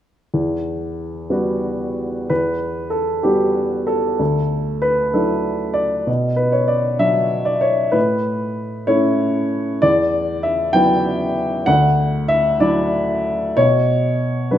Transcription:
0.34 E2
1.30 G3 B3 F#4
2.30 E2 B4
2.90 A4
3.23 G3 B3 F#4 G4
3.87 A4
4.20 D2
4.82 B4
5.14 F#3 D4 E4 A4
5.74 D5
6.07 B2
6.36 B4
6.52 C#5
6.68 D5
6.99 F#3 D4 E5
7.45 D5
7.61 C#5
7.92 A2 B4
8.87 A3 C#4 E4 C#5
9.82 E2 D5
10.43 E5
10.73 F#3 B3 E4 G5
11.66 D2 F#5
12.28 E5
12.60 F#3 D4 E4 D5
13.57 B2 C#5
14.51 F#3 D4 F#4 B4

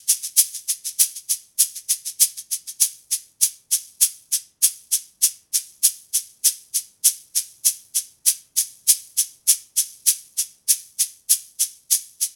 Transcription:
0.09 shaker
0.23 shaker
0.38 shaker
0.54 shaker
0.69 shaker
0.85 shaker
1.00 shaker
1.16 shaker
1.30 shaker
1.60 shaker
1.76 shaker
1.90 shaker
2.06 shaker
2.21 shaker
2.37 shaker
2.52 shaker
2.68 shaker
2.81 shaker
3.12 shaker
3.42 shaker
3.72 shaker
4.02 shaker
4.33 shaker
4.63 shaker
4.93 shaker
5.23 shaker
5.54 shaker
5.84 shaker
6.14 shaker
6.45 shaker
6.75 shaker
7.05 shaker
7.36 shaker
7.65 shaker
7.96 shaker
8.27 shaker
8.57 shaker
8.88 shaker
9.18 shaker
9.48 shaker
9.77 shaker
10.07 shaker
10.38 shaker
10.69 shaker
11.00 shaker
11.30 shaker
11.60 shaker
11.91 shaker
12.21 shaker

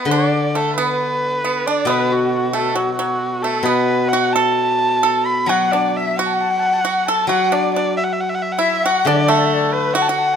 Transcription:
Already playing: B4
0.05 D3
0.11 D4 D5
0.55 A3 A4
0.77 B3 B4
1.45 B3
1.67 D4 D5
1.85 B2 B3
1.90 B4
2.12 F#4
2.53 A3 A4
2.75 F#3 F#4
2.95 F#3 F#4
3.42 A3 A4
3.63 B2 B3 B4
4.08 F#5
4.13 F#4
4.32 A4 A5
5.03 A4
5.26 B5
5.46 F#3 F#4 F#5
5.50 F#5
5.72 D4 D5
5.96 E5
6.16 F#4 F#5
6.26 A5
6.34 F#5
6.41 A5
6.51 F#5
6.59 A5
6.67 F#5
6.73 A5
6.81 F#4 F#5
7.06 A4 A5
7.27 F#3 F#4 F#5
7.52 D4 D5
7.75 D4 D5
7.97 E5
8.04 F#5
8.13 E5
8.20 F#5
8.29 E5
8.35 F#5
8.42 E5
8.52 F#5
8.57 E4 E5
8.84 F#4 F#5
9.05 D3 D4 D5
9.16 E5
9.23 D5
9.28 A3 A4 E5
9.38 D5
9.46 E5
9.54 D5
9.69 B4 D5
9.73 B4
9.94 F#4 F#5
10.02 A5
10.09 F#4 F#5
10.18 A5
10.28 F#5

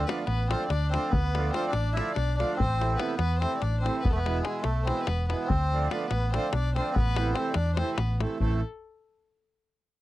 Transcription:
0.06 D3 F3 A3 B3 D4 F4 B4, davul high
0.18 davul high
0.25 A1 B3 B4, davul high
0.47 D3 F3 A3 C4 D4 F4 C5, davul high
0.61 davul high
0.68 D2 D4 D5, davul high
0.90 D3 C4 C5, davul high
0.94 F3 A3 D4 F4
1.10 D2 B3 B4, davul low
1.35 D3 F3 A3 D4 F4, davul high
1.44 davul high
1.50 D3 F3 C4 C5, davul high
1.55 A3 D4 F4
1.64 davul high
1.69 D4 D5, davul high
1.74 A1
1.93 D3 F3 A3 D4 E4 E5
1.97 F4, davul high
2.07 davul high
2.14 B1 D4 D5, davul high
2.28 davul high
2.37 D3 F3 A3 D4 F4 D5, davul high
2.50 davul high
2.56 A1 C4 C5, davul low
2.79 C3 E3 A3 C4 E4, davul high
2.95 C3 E3 A3 B3 B4
3.00 C4 E4, davul high
3.09 davul high
3.16 E2 B3 B4, davul high
3.39 C3 E3 C4 C5, davul high
3.43 A3 C4 E4
3.52 davul high
3.58 D4 D5, davul high
3.62 A1
3.81 C3 E3 C4 C5
3.85 A3 E4, davul high
4.00 B3 B4
4.04 E1, davul low
4.10 A3 A4
4.15 B3 B4
4.26 B2 E3 G#3 B3 E4, davul high
4.43 B2 E3 G#3 G#4, davul high
4.47 B3 E4
4.54 davul high
4.62 B1 A3 A4, davul high
4.85 B2 E3 G#3 B3 C4 C5, davul high
4.89 E4
4.97 davul high
5.04 E1 B3 B4, davul high
5.27 B2 G#3 B3 B4, davul high
5.31 E3 B3 E4
5.47 D2 C4 C5, davul low
5.72 D3 F3 A3 D4 F4
5.88 D3 F3 A3 B3 D4 F4 B4, davul high
6.01 davul high
6.07 A1 B3 B4, davul high
6.31 D3 F3 A3 C4 D4 C5, davul high
6.35 F4
6.44 davul high
6.50 B1 D4 D5, davul high
6.74 D3 F3 A3 C4 D4 F4 C5, davul high
6.92 B3 B4, davul low
6.97 A1
7.16 C3 E3 A3 C4 E4, davul high
7.27 davul high
7.34 C3 E3 A3 C4 C5, davul high
7.38 C4 E4
7.46 davul high
7.52 E2 D4 D5, davul high
7.66 davul high
7.76 C3 E3 C4 C5, davul high
7.80 A3 C4 E4
7.96 A1 B3 B4, davul high
8.20 C3 E3 A3 C4 E4 A4, davul high
8.39 A1 E3 A3 C4 E4 A4, davul low

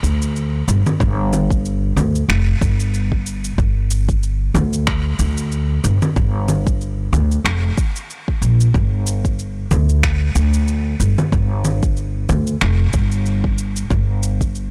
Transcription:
0.03 D2, cabasa
0.22 cabasa
0.36 cabasa
0.68 G1, cabasa
0.87 low conga, cabasa
1.00 G1, kick, cabasa
1.33 low conga, cabasa
1.51 kick, cabasa
1.65 cabasa
1.96 D2, low conga, cabasa
2.15 cabasa
2.29 F1, finger snap, cabasa
2.61 G1, kick, cabasa
2.80 cabasa
2.94 cabasa
3.12 kick
3.26 cabasa
3.44 cabasa
3.58 G1, kick, cabasa
3.91 cabasa
4.09 kick, cabasa
4.23 cabasa
4.54 D2, low conga, cabasa
4.73 cabasa
4.87 finger snap, kick, cabasa
5.19 D2, cabasa
5.38 cabasa
5.52 cabasa
5.84 G1, cabasa
6.02 low conga, cabasa
6.16 G1, kick, cabasa
6.48 low conga, cabasa
6.67 kick, cabasa
6.81 cabasa
7.13 D2, low conga, cabasa
7.31 cabasa
7.44 F1, finger snap, cabasa
7.78 kick, cabasa
7.96 cabasa
8.10 cabasa
8.28 kick
8.42 A#1, cabasa
8.60 cabasa
8.74 G1, kick, cabasa
9.07 cabasa
9.25 kick, cabasa
9.39 cabasa
9.71 D2, low conga, cabasa
9.89 cabasa
10.03 finger snap, kick, cabasa
10.35 D2, cabasa
10.54 cabasa
10.68 cabasa
11.00 G1, cabasa
11.18 low conga, cabasa
11.32 G1, kick, cabasa
11.65 low conga, cabasa
11.83 kick, cabasa
11.97 cabasa
12.29 D2, low conga, cabasa
12.47 cabasa
12.61 F1, finger snap, cabasa
12.93 G1, kick, cabasa
13.12 cabasa
13.26 cabasa
13.44 kick
13.58 cabasa
13.76 cabasa
13.90 G1, kick, cabasa
14.23 cabasa
14.41 kick, cabasa
14.55 cabasa

